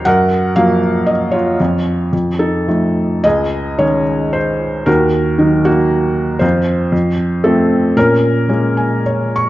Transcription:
0, 0, Header, 1, 2, 480
1, 0, Start_track
1, 0, Key_signature, -5, "minor"
1, 0, Tempo, 516351
1, 56, Time_signature, 3, 2, 24, 8
1, 1977, Tempo, 554017
1, 3897, Tempo, 518583
1, 7737, Tempo, 575264
1, 8574, End_track
2, 0, Start_track
2, 0, Title_t, "Felt piano"
2, 0, Program_c, 0, 0
2, 0, Control_c, 0, 64, 127
2, 47, Note_on_c, 0, 78, 89
2, 56, Note_on_c, 0, 42, 53
2, 63, Note_on_c, 0, 70, 61
2, 69, Control_c, 0, 64, 0
2, 246, Control_c, 0, 64, 127
2, 488, Note_off_c, 0, 78, 0
2, 519, Note_on_c, 0, 77, 80
2, 521, Note_on_c, 0, 53, 36
2, 526, Note_on_c, 0, 54, 36
2, 527, Note_on_c, 0, 58, 42
2, 729, Note_off_c, 0, 70, 0
2, 990, Note_on_c, 0, 75, 58
2, 1012, Note_off_c, 0, 77, 0
2, 1222, Note_on_c, 0, 73, 59
2, 1242, Note_on_c, 0, 65, 45
2, 1243, Note_off_c, 0, 75, 0
2, 1447, Note_off_c, 0, 42, 0
2, 1453, Note_off_c, 0, 53, 0
2, 1456, Note_off_c, 0, 54, 0
2, 1456, Note_off_c, 0, 58, 0
2, 1489, Note_on_c, 0, 41, 47
2, 1495, Control_c, 0, 64, 0
2, 1637, Control_c, 0, 64, 127
2, 1685, Note_off_c, 0, 73, 0
2, 1940, Note_off_c, 0, 65, 0
2, 1963, Note_off_c, 0, 41, 0
2, 1977, Note_on_c, 0, 41, 35
2, 1987, Control_c, 0, 64, 0
2, 2122, Control_c, 0, 64, 127
2, 2206, Note_on_c, 0, 69, 54
2, 2211, Note_on_c, 0, 63, 36
2, 2448, Note_off_c, 0, 63, 0
2, 2458, Note_on_c, 0, 53, 26
2, 2458, Note_on_c, 0, 57, 25
2, 2461, Note_on_c, 0, 63, 28
2, 2918, Note_off_c, 0, 41, 0
2, 2933, Note_off_c, 0, 53, 0
2, 2933, Note_off_c, 0, 57, 0
2, 2935, Note_off_c, 0, 63, 0
2, 2939, Note_on_c, 0, 68, 44
2, 2939, Note_on_c, 0, 75, 75
2, 2946, Note_on_c, 0, 37, 42
2, 2958, Control_c, 0, 64, 0
2, 2966, Note_off_c, 0, 69, 0
2, 3096, Control_c, 0, 64, 127
2, 3414, Note_on_c, 0, 51, 28
2, 3414, Note_on_c, 0, 73, 65
2, 3419, Note_on_c, 0, 56, 26
2, 3422, Note_on_c, 0, 61, 32
2, 3438, Note_off_c, 0, 75, 0
2, 3626, Note_off_c, 0, 68, 0
2, 3885, Note_on_c, 0, 72, 59
2, 3906, Note_off_c, 0, 73, 0
2, 4347, Note_off_c, 0, 37, 0
2, 4347, Note_off_c, 0, 51, 0
2, 4350, Note_off_c, 0, 56, 0
2, 4352, Note_off_c, 0, 61, 0
2, 4376, Note_on_c, 0, 70, 71
2, 4380, Note_on_c, 0, 39, 50
2, 4390, Note_on_c, 0, 66, 49
2, 4392, Note_off_c, 0, 72, 0
2, 4396, Control_c, 0, 64, 0
2, 4568, Control_c, 0, 64, 127
2, 4859, Note_on_c, 0, 51, 34
2, 4863, Note_on_c, 0, 54, 28
2, 4865, Note_on_c, 0, 63, 36
2, 5065, Note_off_c, 0, 66, 0
2, 5107, Note_on_c, 0, 66, 71
2, 5117, Note_off_c, 0, 70, 0
2, 5118, Note_on_c, 0, 58, 37
2, 5770, Note_off_c, 0, 39, 0
2, 5779, Note_off_c, 0, 51, 0
2, 5781, Note_off_c, 0, 54, 0
2, 5781, Note_off_c, 0, 58, 0
2, 5782, Note_off_c, 0, 63, 0
2, 5795, Note_on_c, 0, 72, 58
2, 5813, Note_on_c, 0, 41, 49
2, 5815, Note_on_c, 0, 65, 47
2, 5819, Control_c, 0, 64, 0
2, 5834, Note_off_c, 0, 66, 0
2, 5986, Control_c, 0, 64, 127
2, 6271, Note_off_c, 0, 41, 0
2, 6285, Note_on_c, 0, 41, 49
2, 6299, Control_c, 0, 64, 0
2, 6437, Control_c, 0, 64, 127
2, 6483, Note_off_c, 0, 72, 0
2, 6493, Note_off_c, 0, 65, 0
2, 6762, Note_on_c, 0, 69, 62
2, 6768, Note_on_c, 0, 53, 31
2, 6771, Note_on_c, 0, 57, 31
2, 6771, Note_on_c, 0, 60, 37
2, 7218, Note_off_c, 0, 41, 0
2, 7234, Note_off_c, 0, 53, 0
2, 7236, Note_off_c, 0, 57, 0
2, 7236, Note_off_c, 0, 60, 0
2, 7250, Note_on_c, 0, 46, 43
2, 7253, Note_on_c, 0, 70, 80
2, 7259, Control_c, 0, 64, 0
2, 7260, Note_off_c, 0, 69, 0
2, 7269, Note_on_c, 0, 61, 50
2, 7404, Control_c, 0, 64, 127
2, 7727, Note_off_c, 0, 61, 0
2, 7735, Note_on_c, 0, 58, 30
2, 7736, Note_on_c, 0, 56, 33
2, 7740, Note_on_c, 0, 61, 36
2, 7970, Note_on_c, 0, 80, 47
2, 8180, Note_off_c, 0, 70, 0
2, 8196, Note_off_c, 0, 80, 0
2, 8212, Note_on_c, 0, 73, 43
2, 8459, Note_on_c, 0, 85, 63
2, 8574, Note_off_c, 0, 46, 0
2, 8574, Note_off_c, 0, 56, 0
2, 8574, Note_off_c, 0, 58, 0
2, 8574, Note_off_c, 0, 61, 0
2, 8574, Note_off_c, 0, 73, 0
2, 8574, Note_off_c, 0, 85, 0
2, 8574, End_track
0, 0, End_of_file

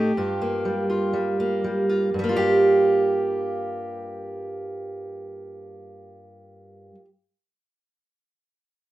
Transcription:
0, 0, Header, 1, 2, 480
1, 0, Start_track
1, 0, Key_signature, -2, "minor"
1, 0, Tempo, 961538
1, 564, Tempo, 1016949
1, 1043, Time_signature, 4, 2, 24, 8
1, 4239, End_track
2, 0, Start_track
2, 0, Title_t, "Steel-string acoustic guitar"
2, 0, Program_c, 0, 25
2, 0, Note_on_c, 0, 45, 62
2, 0, Note_on_c, 0, 57, 61
2, 0, Note_on_c, 0, 60, 41
2, 0, Note_on_c, 0, 63, 41
2, 0, Note_on_c, 0, 67, 72
2, 52, Note_off_c, 0, 57, 0
2, 54, Note_off_c, 0, 60, 0
2, 55, Note_off_c, 0, 63, 0
2, 56, Note_off_c, 0, 45, 0
2, 86, Note_on_c, 0, 43, 65
2, 90, Note_on_c, 0, 65, 43
2, 208, Note_on_c, 0, 58, 41
2, 325, Note_on_c, 0, 55, 51
2, 441, Note_off_c, 0, 65, 0
2, 447, Note_on_c, 0, 65, 41
2, 561, Note_off_c, 0, 55, 0
2, 566, Note_on_c, 0, 55, 52
2, 685, Note_off_c, 0, 58, 0
2, 691, Note_on_c, 0, 58, 42
2, 801, Note_off_c, 0, 55, 0
2, 806, Note_on_c, 0, 55, 49
2, 919, Note_off_c, 0, 65, 0
2, 925, Note_on_c, 0, 65, 39
2, 1016, Note_off_c, 0, 55, 0
2, 1016, Note_off_c, 0, 65, 0
2, 1036, Note_off_c, 0, 43, 0
2, 1042, Note_on_c, 0, 43, 59
2, 1049, Note_off_c, 0, 67, 0
2, 1064, Note_on_c, 0, 55, 55
2, 1081, Note_off_c, 0, 58, 0
2, 1087, Note_on_c, 0, 58, 57
2, 1112, Note_on_c, 0, 65, 53
2, 1147, Note_on_c, 0, 67, 76
2, 3287, Note_off_c, 0, 43, 0
2, 3309, Note_off_c, 0, 55, 0
2, 3332, Note_off_c, 0, 58, 0
2, 3357, Note_off_c, 0, 65, 0
2, 3373, Note_off_c, 0, 67, 0
2, 4239, End_track
0, 0, End_of_file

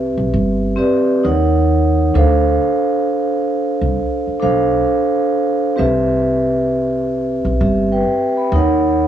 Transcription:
0, 0, Header, 1, 4, 480
1, 0, Start_track
1, 0, Tempo, 909091
1, 1136, Time_signature, 4, 2, 24, 8
1, 4792, End_track
2, 0, Start_track
2, 0, Title_t, "Vibraphone"
2, 0, Program_c, 0, 11
2, 0, Control_c, 0, 64, 127
2, 0, Note_on_c, 0, 60, 83
2, 0, Note_on_c, 0, 67, 68
2, 0, Note_on_c, 0, 71, 73
2, 0, Note_on_c, 0, 76, 82
2, 90, Note_off_c, 0, 60, 0
2, 93, Note_off_c, 0, 67, 0
2, 94, Note_off_c, 0, 71, 0
2, 97, Note_off_c, 0, 76, 0
2, 401, Note_on_c, 0, 60, 81
2, 406, Note_on_c, 0, 67, 77
2, 409, Note_on_c, 0, 71, 74
2, 416, Note_on_c, 0, 74, 88
2, 648, Note_off_c, 0, 60, 0
2, 651, Note_off_c, 0, 67, 0
2, 652, Note_off_c, 0, 71, 0
2, 652, Note_on_c, 0, 63, 70
2, 656, Note_off_c, 0, 74, 0
2, 657, Note_on_c, 0, 70, 74
2, 661, Note_on_c, 0, 73, 70
2, 663, Control_c, 0, 64, 0
2, 666, Note_on_c, 0, 78, 76
2, 759, Control_c, 0, 64, 127
2, 1095, Note_off_c, 0, 63, 0
2, 1097, Note_off_c, 0, 70, 0
2, 1099, Note_off_c, 0, 73, 0
2, 1102, Note_off_c, 0, 78, 0
2, 1132, Note_on_c, 0, 62, 76
2, 1136, Note_on_c, 0, 69, 67
2, 1141, Note_on_c, 0, 72, 72
2, 1143, Control_c, 0, 64, 0
2, 1146, Note_on_c, 0, 77, 88
2, 1244, Control_c, 0, 64, 127
2, 2016, Note_off_c, 0, 62, 0
2, 2017, Note_off_c, 0, 69, 0
2, 2020, Note_off_c, 0, 72, 0
2, 2022, Note_off_c, 0, 77, 0
2, 2322, Note_on_c, 0, 62, 79
2, 2327, Note_on_c, 0, 69, 70
2, 2332, Note_on_c, 0, 72, 72
2, 2336, Note_on_c, 0, 77, 89
2, 2990, Note_off_c, 0, 62, 0
2, 2992, Note_off_c, 0, 69, 0
2, 2995, Note_off_c, 0, 72, 0
2, 2997, Note_off_c, 0, 77, 0
2, 3041, Note_on_c, 0, 60, 78
2, 3045, Note_on_c, 0, 67, 66
2, 3050, Note_on_c, 0, 71, 71
2, 3054, Note_on_c, 0, 76, 90
2, 3063, Control_c, 0, 64, 0
2, 3154, Control_c, 0, 64, 127
2, 3930, Note_off_c, 0, 60, 0
2, 3932, Note_off_c, 0, 67, 0
2, 3934, Note_off_c, 0, 71, 0
2, 3937, Note_off_c, 0, 76, 0
2, 4015, Note_on_c, 0, 76, 61
2, 4020, Note_on_c, 0, 67, 50
2, 4163, Note_off_c, 0, 76, 0
2, 4165, Note_off_c, 0, 67, 0
2, 4182, Note_on_c, 0, 79, 65
2, 4186, Note_on_c, 0, 71, 61
2, 4405, Note_off_c, 0, 79, 0
2, 4407, Note_off_c, 0, 71, 0
2, 4420, Note_on_c, 0, 83, 57
2, 4503, Control_c, 0, 64, 0
2, 4504, Note_on_c, 0, 63, 76
2, 4509, Note_on_c, 0, 70, 69
2, 4514, Note_on_c, 0, 73, 73
2, 4518, Note_on_c, 0, 78, 83
2, 4605, Control_c, 0, 64, 127
2, 4644, Note_off_c, 0, 83, 0
2, 4792, Note_off_c, 0, 63, 0
2, 4792, Note_off_c, 0, 70, 0
2, 4792, Note_off_c, 0, 73, 0
2, 4792, Note_off_c, 0, 78, 0
2, 4792, End_track
3, 0, Start_track
3, 0, Title_t, "Upright bass"
3, 0, Program_c, 1, 32
3, 0, Note_on_c, 1, 36, 95
3, 71, Note_off_c, 1, 36, 0
3, 92, Note_on_c, 1, 35, 82
3, 168, Note_off_c, 1, 35, 0
3, 177, Note_on_c, 1, 31, 94
3, 395, Note_off_c, 1, 31, 0
3, 658, Note_on_c, 1, 39, 93
3, 1115, Note_off_c, 1, 39, 0
3, 1136, Note_on_c, 1, 38, 99
3, 1355, Note_off_c, 1, 38, 0
3, 2014, Note_on_c, 1, 36, 83
3, 2089, Note_off_c, 1, 36, 0
3, 2337, Note_on_c, 1, 35, 84
3, 2555, Note_off_c, 1, 35, 0
3, 3058, Note_on_c, 1, 36, 92
3, 3911, Note_off_c, 1, 36, 0
3, 3932, Note_on_c, 1, 35, 81
3, 4008, Note_off_c, 1, 35, 0
3, 4016, Note_on_c, 1, 31, 100
3, 4235, Note_off_c, 1, 31, 0
3, 4497, Note_on_c, 1, 39, 97
3, 4792, Note_off_c, 1, 39, 0
3, 4792, End_track
4, 0, Start_track
4, 0, Title_t, "Muted upright bass strokes"
4, 2255, Note_on_c, 9, 29, 43
4, 2308, Note_off_c, 9, 29, 0
4, 4792, End_track
0, 0, End_of_file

